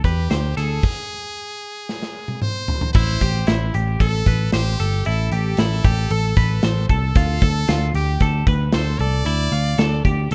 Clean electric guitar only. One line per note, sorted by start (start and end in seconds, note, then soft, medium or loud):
0.05 0.30 B4 medium
0.31 0.57 C5 medium
0.57 0.84 A4 medium
2.95 3.22 E4 medium
3.22 3.48 G4 medium
3.47 3.74 E4 medium
3.75 4.01 G4 medium
4.01 4.27 A4 medium
4.27 4.53 B4 medium
4.54 4.79 C5 medium
4.80 5.06 A4 medium
5.06 5.32 E4 loud
5.32 5.58 G4 medium
5.59 5.85 E4 medium
5.85 6.11 G4 medium
6.11 6.36 A4 medium
6.37 6.63 B4 loud
6.64 6.90 C5 medium
6.90 7.16 A4 medium
7.17 7.43 F4 loud
7.42 7.68 A4 medium
7.69 7.95 F4 loud
7.95 8.21 G4 medium
8.22 8.48 A4 medium
8.48 8.73 B4 medium
8.74 9.00 C5 medium
9.01 9.26 A4 medium
9.26 9.52 E4 loud
9.52 9.79 F4 medium
9.78 10.04 A4 loud
10.05 10.31 G4 medium